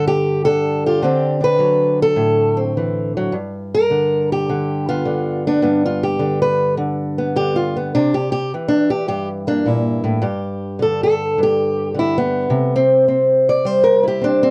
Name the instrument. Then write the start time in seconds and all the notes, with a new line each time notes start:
steel-string acoustic guitar
Already playing: G2 D3
0.07 G4
0.45 D3 A4
0.86 F4 G4
1.02 D3 C4 D4
1.41 D4 B4
1.59 F#3
2.02 A4
2.16 A2
2.57 C4
2.77 E3
3.17 F#3
3.32 G2
3.74 A#4
3.90 D3
4.32 G4
4.49 D3
4.89 B3 F4
5.05 D3
5.47 B3 D4
5.62 G2 B3
5.86 F4
6.03 G4
6.19 D3
6.42 B4
6.77 D3
7.18 B3
7.36 D3 G4
7.56 F4
7.76 B3
7.95 C3 D4
8.14 G4
8.32 G4
8.54 E3
8.68 D4
8.90 G4
9.08 G2 G4
9.47 A#3 D4
9.66 A#2 E4
10.04 A2
10.22 G2 G4
10.79 D3 A4
11.03 A4
11.38 G2
11.43 G4
11.94 D3
11.99 E4
12.18 B3
12.50 C3
12.76 C4
13.08 C4
13.49 D5
13.65 G3 C5
13.84 A#4
14.03 E4
14.08 G4
14.21 C4 D4
14.43 C4